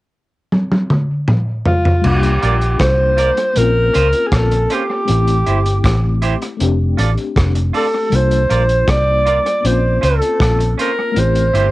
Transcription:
0.52 high tom medium
0.72 high tom medium
0.90 mid tom medium
1.28 mid tom medium
1.66 2.08 F4 medium
1.66 floor tom loud
1.85 floor tom medium
2.02 2.38 C2 loud
2.02 3.52 G3 medium
2.02 3.52 A#3 soft
2.02 crash medium
2.06 3.54 D4 soft
2.06 3.55 F4 medium
2.06 2.82 G4 medium
2.23 closed hi-hat medium
2.42 2.76 A#1 medium
2.42 2.54 F4 medium
2.42 2.54 A#4 medium
2.42 2.54 D5 medium
2.42 closed hi-hat medium
2.61 closed hi-hat soft
2.80 3.30 C2 medium
2.80 3.59 C5 medium
2.80 kick medium
2.80 cross-stick loud
2.80 closed hi-hat medium
3.17 3.29 F4 medium
3.17 3.30 A#4 medium
3.17 3.30 D5 medium
3.17 closed hi-hat medium
3.37 closed hi-hat soft
3.53 3.90 A#1 loud
3.53 5.04 A#3 medium
3.53 5.05 C4 medium
3.53 closed hi-hat medium
3.58 5.06 C#4 medium
3.58 5.07 F4 medium
3.58 4.29 A#4 medium
3.93 4.12 C#2 medium
3.93 4.05 C#4 medium
3.93 4.06 F4 medium
3.93 4.06 C5 loud
3.93 closed hi-hat medium
4.13 closed hi-hat soft
4.27 4.37 G#4 medium
4.32 4.65 A#1 medium
4.32 4.76 A4 medium
4.32 kick medium
4.32 cross-stick loud
4.32 closed hi-hat medium
4.51 muted clean electric guitar stroke soft
4.51 closed hi-hat medium
4.70 4.82 C#4 medium
4.70 4.82 F4 medium
4.70 4.83 C5 medium
4.70 closed hi-hat medium
4.74 6.24 G4 loud
5.05 5.42 A1 loud
5.05 6.56 A3 medium
5.05 6.57 C4 medium
5.05 closed hi-hat medium
5.10 6.58 E4 medium
5.10 6.59 G4 medium
5.27 closed hi-hat medium
5.46 5.80 G1 medium
5.46 5.58 E4 medium
5.46 5.58 G4 medium
5.46 5.59 C5 medium
5.46 closed hi-hat medium
5.65 closed hi-hat soft
5.84 6.34 A1 medium
5.84 kick loud
5.84 cross-stick loud
5.84 closed hi-hat medium
6.22 6.34 E4 medium
6.22 6.34 G4 medium
6.22 6.34 C5 medium
6.22 closed hi-hat medium
6.42 closed hi-hat medium
6.57 8.07 A3 medium
6.57 8.09 C4 medium
6.57 closed hi-hat medium
6.61 6.94 F1 loud
6.61 8.10 D4 medium
6.61 8.11 G4 medium
6.97 7.15 A1 medium
6.97 7.09 F4 medium
6.97 7.10 A4 medium
6.97 7.10 D5 medium
6.97 closed hi-hat medium
7.17 closed hi-hat soft
7.36 7.70 F1 medium
7.36 kick medium
7.36 cross-stick loud
7.36 closed hi-hat medium
7.55 muted clean electric guitar stroke soft
7.55 closed hi-hat medium
7.73 7.85 F4 medium
7.73 7.86 A4 loud
7.73 8.17 A4 loud
7.73 7.86 D5 medium
7.73 open hi-hat soft
8.10 8.45 C2 loud
8.10 9.60 G3 medium
8.10 9.59 A#3 medium
8.10 closed hi-hat medium
8.14 9.62 D4 medium
8.14 9.63 F4 medium
8.14 8.91 C5 loud
8.31 closed hi-hat medium
8.49 8.83 A#1 medium
8.49 8.61 F4 medium
8.49 8.62 A#4 medium
8.49 8.62 D5 medium
8.49 closed hi-hat medium
8.69 closed hi-hat soft
8.88 9.38 C2 medium
8.88 9.67 D5 loud
8.88 kick medium
8.88 cross-stick loud
8.88 closed hi-hat medium
9.25 9.37 F4 medium
9.25 9.38 A#4 medium
9.25 9.38 D5 medium
9.25 closed hi-hat medium
9.46 closed hi-hat soft
9.60 9.97 A#1 loud
9.60 11.11 A#3 medium
9.60 11.12 C4 medium
9.64 11.13 C#4 medium
9.64 11.14 F4 medium
9.64 10.03 C5 medium
9.64 closed hi-hat medium
10.01 10.19 C#2 medium
10.01 10.13 C#4 medium
10.01 10.13 F4 medium
10.01 10.75 A4 medium
10.01 10.14 C5 medium
10.01 closed hi-hat medium
10.22 closed hi-hat soft
10.40 10.74 A#1 medium
10.40 kick loud
10.40 cross-stick loud
10.40 closed hi-hat medium
10.59 muted clean electric guitar stroke soft
10.59 closed hi-hat medium
10.78 10.89 C#4 medium
10.78 10.90 F4 medium
10.78 11.21 A#4 medium
10.78 10.90 C5 loud
10.78 closed hi-hat medium
11.12 11.71 A3 medium
11.12 11.71 C4 medium
11.16 11.49 A1 loud
11.16 11.71 E4 medium
11.16 11.71 G4 medium
11.16 11.71 C5 loud
11.16 closed hi-hat medium
11.35 closed hi-hat medium
11.54 11.71 G1 medium
11.54 11.65 E4 medium
11.54 11.66 G4 medium
11.54 11.66 C5 medium
11.54 closed hi-hat medium

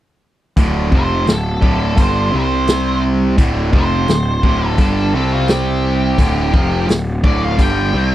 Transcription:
0.57 0.90 D1 medium
0.57 0.91 D2 medium
0.57 0.91 A2 medium
0.57 0.91 D3 medium
0.57 kick medium
0.57 open hi-hat soft
0.92 1.25 F1 medium
0.92 1.26 F2 medium
0.92 1.26 C3 medium
0.92 1.26 F3 medium
0.92 1.28 C5 medium
0.92 kick medium
1.27 1.60 D1 medium
1.27 1.55 D2 soft
1.27 1.55 A2 medium
1.27 snare loud
1.27 open hi-hat soft
1.31 1.97 A4 medium
1.62 1.95 D1 medium
1.62 1.96 D2 medium
1.62 1.96 A2 medium
1.62 1.95 D3 medium
1.62 kick medium
1.96 2.30 G1 medium
1.96 2.31 G2 medium
1.96 2.31 D3 medium
1.96 2.31 G3 medium
1.96 2.33 C5 medium
1.96 kick medium
1.96 open hi-hat soft
2.32 3.35 C2 medium
2.32 3.37 C3 medium
2.32 3.37 G3 medium
2.32 3.37 C4 medium
2.37 3.03 C5 medium
2.67 snare medium
2.67 open hi-hat soft
3.37 3.71 D1 medium
3.37 3.71 D2 medium
3.37 3.72 A2 medium
3.37 3.72 D3 medium
3.37 kick medium
3.37 open hi-hat soft
3.72 4.06 F1 medium
3.72 4.06 F2 medium
3.72 4.07 C3 medium
3.72 4.07 F3 medium
3.72 kick medium
3.77 4.68 C5 medium
4.08 4.41 D1 medium
4.08 4.37 D2 medium
4.08 4.37 A2 medium
4.08 snare loud
4.08 open hi-hat soft
4.43 4.76 D1 medium
4.43 4.78 D2 medium
4.43 4.78 A2 medium
4.43 4.78 D3 medium
4.43 kick medium
4.68 5.11 A4 medium
4.78 5.11 G1 medium
4.78 5.13 G2 medium
4.78 5.13 D3 medium
4.78 5.13 G3 medium
4.78 kick medium
4.78 open hi-hat soft
5.13 6.15 C2 medium
5.13 6.18 C3 medium
5.13 6.18 G3 medium
5.13 6.19 C4 medium
5.13 5.32 A4 medium
5.32 5.49 F4 medium
5.48 6.86 G4 medium
5.48 snare loud
5.48 open hi-hat soft
6.18 6.51 D1 medium
6.18 6.53 D2 medium
6.18 6.53 A2 medium
6.18 6.53 D3 medium
6.18 kick medium
6.18 open hi-hat soft
6.54 6.87 F1 medium
6.54 6.88 F2 medium
6.54 6.88 C3 medium
6.54 6.89 F3 medium
6.54 kick medium
6.88 7.22 D1 medium
6.88 7.17 D2 medium
6.88 7.17 A2 medium
6.88 snare loud
6.88 open hi-hat soft
7.23 7.57 D1 medium
7.23 7.58 D2 medium
7.23 7.58 A2 medium
7.23 7.58 D3 medium
7.23 7.43 D5 medium
7.23 kick medium
7.43 7.59 F5 medium
7.58 7.92 G1 medium
7.58 7.93 G2 medium
7.58 7.93 D3 medium
7.58 7.93 G3 medium
7.58 8.15 G5 medium
7.58 kick medium
7.58 open hi-hat soft
7.94 8.15 C2 medium
7.94 8.15 C3 medium
7.94 8.15 G3 medium
7.94 8.15 C4 medium

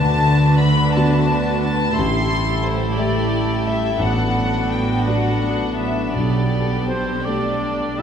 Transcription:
0.00 0.94 D2 soft
0.00 1.98 D3 medium
0.00 2.00 D3 soft
0.00 3.98 A3 medium
0.00 0.26 D4 soft
0.00 1.95 D4 medium
0.00 1.94 F#4 soft
0.00 2.82 A4 soft
0.00 0.60 B4 soft
0.00 1.94 B4 soft
0.00 0.57 A5 medium
0.27 1.62 D4 soft
0.61 1.28 B4 soft
0.61 0.96 B5 medium
0.94 1.94 B3 soft
0.94 2.01 F#4 soft
0.94 1.94 F#4 soft
0.94 1.94 D5 soft
0.94 1.61 A5 medium
1.29 2.00 B4 soft
1.62 2.00 D4 soft
1.62 1.96 A5 medium
1.97 2.96 A1 soft
1.97 4.00 A2 soft
1.97 6.13 A2 soft
1.97 3.98 E4 soft
1.97 3.97 G4 soft
1.97 6.13 A4 soft
1.97 2.65 C6 medium
2.30 3.66 G3 soft
2.64 3.31 E4 soft
2.64 2.99 C5 medium
2.97 3.97 A3 soft
2.97 3.97 G4 soft
2.97 6.88 A4 soft
2.97 3.66 D5 soft
2.97 3.97 E5 soft
3.33 4.04 E4 soft
3.66 4.04 G3 soft
3.66 4.01 E5 medium
3.99 5.03 A1 soft
3.99 6.20 A2 soft
3.99 6.86 B3 soft
3.99 6.90 D4 soft
3.99 6.17 F#4 soft
3.99 4.72 F#5 medium
4.36 5.78 F#3 soft
4.71 5.42 D4 soft
4.71 5.07 G5 medium
5.06 6.12 B3 soft
5.06 6.13 F#4 soft
5.06 6.13 D5 soft
5.06 5.79 F#5 soft
5.06 8.02 B5 soft
5.43 6.88 D4 soft
5.77 6.19 F#3 soft
5.77 6.15 E5 soft
6.16 7.23 B1 soft
6.16 8.02 B2 soft
6.16 8.02 G4 soft
6.16 8.02 A4 soft
6.16 6.90 D5 soft
6.53 7.98 G3 soft
6.89 7.24 C4 soft
6.89 7.61 D4 soft
6.89 7.23 C5 soft
6.89 7.27 C5 soft
7.23 8.02 A3 soft
7.23 7.99 D4 soft
7.23 8.02 G4 soft
7.23 8.02 A4 soft
7.23 7.98 D5 soft
7.23 8.01 D5 soft
7.23 8.02 D5 soft
7.98 8.02 G3 soft
7.98 8.02 E4 soft
7.98 8.02 E5 soft

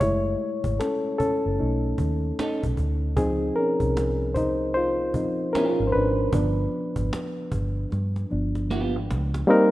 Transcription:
0.00 0.34 F#1 medium
0.00 0.57 G#3 medium
0.00 0.57 A3 soft
0.00 0.77 E4 medium
0.00 0.82 C#5 loud
0.00 cajon bass loud
0.23 cajon slap soft
0.40 cajon slap soft
0.64 0.78 G#1 medium
0.64 cajon bass medium
0.80 1.18 C#4 medium
0.80 1.17 A4 medium
0.80 cajon slap medium
1.05 cajon slap soft
1.07 cajon slap soft
1.18 1.58 C#4 medium
1.18 2.73 A4 medium
1.18 muted fingered electric bass stroke soft
1.18 cajon bass medium
1.46 1.57 F#1 medium
1.46 cajon slap soft
1.59 1.93 B1 medium
1.59 2.73 A3 soft
1.59 2.74 C#4 soft
1.59 2.74 D#4 medium
1.59 cajon slap soft
1.84 cajon slap soft
1.98 2.31 D#2 medium
1.98 cajon bass medium
2.23 cajon slap soft
2.39 2.61 C#4 medium
2.39 2.62 D#4 medium
2.39 2.62 A4 medium
2.39 cajon slap medium
2.63 2.76 B1 medium
2.63 cajon bass medium
2.77 3.18 D2 medium
2.77 cajon bass medium
3.02 cajon slap soft
3.17 3.50 C#2 loud
3.17 5.14 F3 medium
3.17 3.55 C4 medium
3.17 4.36 D#4 medium
3.17 3.57 G#4 medium
3.17 cajon bass loud
3.39 cajon slap soft
3.56 4.32 C#4 medium
3.56 4.37 A#4 medium
3.56 cajon slap soft
3.80 5.15 C2 medium
3.80 cajon bass medium
3.97 cajon slap loud
3.97 cajon slap medium
4.21 cajon slap soft
4.22 cajon slap soft
4.34 4.73 D#4 medium
4.34 4.73 C5 medium
4.34 cajon bass medium
4.61 cajon slap soft
4.74 5.51 F4 medium
4.74 5.56 C5 loud
4.74 cajon slap soft
5.00 cajon slap soft
5.14 5.47 A#1 medium
5.14 5.50 F3 soft
5.14 5.50 C4 soft
5.14 5.51 D#4 medium
5.14 cajon bass medium
5.39 cajon slap soft
5.53 5.78 C4 medium
5.53 5.86 C#4 medium
5.53 5.79 F4 medium
5.53 5.79 G#4 medium
5.53 5.88 A#4 medium
5.53 cajon slap medium
5.80 5.92 G#1 medium
5.80 cajon slap soft
5.87 5.93 C5 medium
5.92 6.27 G#1 medium
5.92 6.33 D4 medium
5.92 8.65 B4 medium
5.92 cajon slap soft
6.18 cajon slap soft
6.33 6.66 G1 loud
6.33 8.29 F3 medium
6.33 8.30 B3 medium
6.33 8.30 D4 medium
6.33 cajon bass loud
6.56 cajon slap soft
6.72 cajon slap soft
6.96 7.09 G#1 medium
6.96 cajon bass medium
6.96 cajon slap soft
7.13 cajon slap loud
7.13 cajon slap medium
7.37 cajon slap soft
7.39 cajon slap soft
7.52 7.84 G1 medium
7.52 cajon bass medium
7.77 cajon slap soft
7.90 cajon slap soft
7.92 8.24 G2 loud
7.92 cajon slap medium
8.16 cajon slap medium
8.31 8.96 G1 medium
8.31 8.66 F3 soft
8.31 8.66 B3 soft
8.31 8.66 D4 medium
8.31 cajon slap soft
8.55 cajon slap medium
8.71 8.94 B3 medium
8.71 8.94 F4 medium
8.71 8.95 G4 medium
8.71 cajon slap medium
8.96 9.13 G#1 medium
8.96 cajon slap soft
9.11 9.43 C#2 medium
9.11 cajon slap medium
9.34 cajon slap medium
9.47 9.71 G3 loud
9.47 9.71 A#3 loud
9.47 9.71 C4 loud
9.47 9.71 D#4 loud
9.47 9.71 A#4 loud

